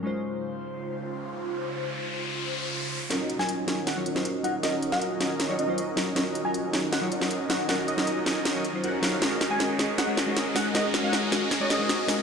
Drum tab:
HH |----------------|----------------|x-x-x-x-x-x-x-x-|x-x-x-x-x-x-x-x-|
SD |----------------|----------------|o--o--o-o--o----|o--o--o-o-----o-|

HH |x-x-x-x-x-x-x-x-|x-x-x-x-x-x-x-x-|x-x-x-x-x-x-x-o-|x-x-x-x-x-x-x-o-|
SD |o-----o-o--o--o-|o--o--o-o-----o-|o-o-o-o-o-o-o-o-|o-o-o-o-o-o-o-o-|